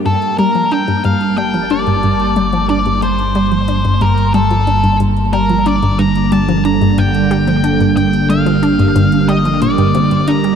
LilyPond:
<<
  \new Staff \with { instrumentName = "Lead electric guitar" } { \time 4/4 \key g \minor \tempo 4 = 91 a'8 bes'8 g''8 f''8 g''8 d''4. | d''8 c''4. bes'8 a'4 r8 | bes'8 d''8 bes''8 a''8 bes''8 g''4. | g''8 f''4. ees''8 d''4 bes''8 | }
  \new Staff \with { instrumentName = "Analog synth pad" } { \clef bass \time 4/4 \key g \minor << { a''1~ | a''1 | d1~ | d1 | } \\ { <g bes>1~ | <g bes>1~ | <g bes>1~ | <g bes>1 | } >> }
  \new Staff \with { instrumentName = "Synth arpeggio sound" } { \clef bass \time 4/4 \key g \minor g,16 r16 g16 f16 d'16 g,16 g,16 r16 g16 f16 d'16 g,16 g,16 r16 g16 f16 | d'16 g,16 g,16 r16 g16 f16 d'16 g,16 g,16 r16 g16 f16 d'16 g,16 g,16 r16 | g16 f16 d'16 g,16 g,16 r16 g16 f16 d'16 g,16 g,16 r16 g16 f16 d'16 g,16 | g,16 r16 g16 f16 d'16 g,16 g,16 r16 g16 f16 bes,16 g,16 c16 g,16 d'16 g16 | }
  \new Staff \with { instrumentName = "Synth drone" } { \clef bass \time 4/4 \key g \minor g,,1~ | g,,1~ | g,,1~ | g,,1 | }
  \new DrumStaff \with { instrumentName = "Drums" } \drummode { \time 4/4 hh16 hh16 hh16 hh16 hh16 hh16 hh16 <cgho hh>16 hh16 <cgho hh>16 hh16 hh16 hh16 hh16 hh16 hh16 | hh16 hh16 hh16 hh16 hh16 hh16 hh16 <cgho hh>16 hh16 hh16 hh16 hh16 hh16 hh16 hh16 hh16 | hh16 hh16 hh16 hh16 hh16 hh16 hh16 <cgho hh>16 hh16 <cgho hh>16 hh16 hh16 hh16 hh16 hh16 hh16 | hh16 hh16 hh16 hh16 hh16 hh16 hh16 <cgho hh>16 hh16 hh16 hh16 hh16 hh16 hh16 hh16 hh16 | }
>>